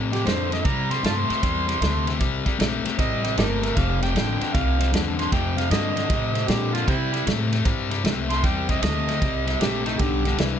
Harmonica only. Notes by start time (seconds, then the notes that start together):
0.13 G4
0.27 C5
0.53 D#5
0.66 A#5
0.92 C6
1.06 F5 A5 C6
2.99 D#5
3.39 D#4 G4 A#4
3.64 A#4
3.77 F5
4.03 G5
4.54 F5
5.19 C6
5.33 G5
5.58 F5
5.71 D#5
6.48 G4
6.74 F4
6.88 G3 C4 E4
8.30 C6
8.44 G5
8.70 D#5
8.82 D#5
9.62 G4
9.86 D#4
10.00 G4